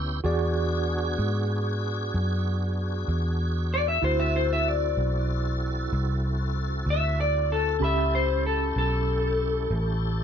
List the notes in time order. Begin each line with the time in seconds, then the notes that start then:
Already playing: D2 B3 C#4 E4 G4 B4 C#5
0.24 E2 B3 D4 F#4 G#4 D5
1.19 G#2
2.14 F#2
3.08 E2
3.74 D5
3.88 E5
4.02 D2 C4 E4 F#4 A4 C5
4.20 E5
4.36 C5
4.53 E5
4.69 D5
4.97 B1
5.93 C2
6.86 D2
6.90 E5
7.21 D5
7.52 A4
7.79 C#2 C#4 E4 G4 A4 B5
7.84 E5
8.15 C5
8.46 A4
8.76 B1 A4
9.70 A1